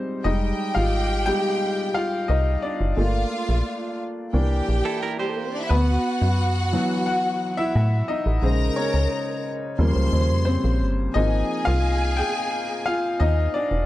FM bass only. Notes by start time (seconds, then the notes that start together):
0.25 F1
0.76 G#1
2.30 C2
2.81 F#1
2.98 G1
3.49 A#1
4.34 C2
4.69 A#1
5.71 D2
6.22 F#2
7.75 A2
8.26 A1
8.43 A#1
8.94 C#2
9.79 D#2
9.96 C#2
10.13 D#2
10.30 F2
10.64 A#1
10.81 G1
11.16 G#1
11.67 C2
13.21 D#2
13.71 E1